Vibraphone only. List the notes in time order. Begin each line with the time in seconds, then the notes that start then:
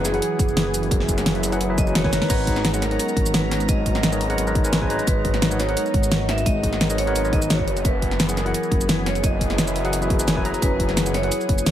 0.04 G#4
1.78 D#5
1.95 C#5
2.30 B4
2.82 A#4
3.00 A#4
3.34 B4
3.69 D#5
5.07 B4
5.59 C#5
6.28 E5
6.46 D#5
6.98 C#5
7.33 D#5
7.50 C#5
7.85 B4
8.37 A#4
8.54 A#4
8.89 B4
9.06 C#5
9.24 D#5
10.62 B4
11.14 C#5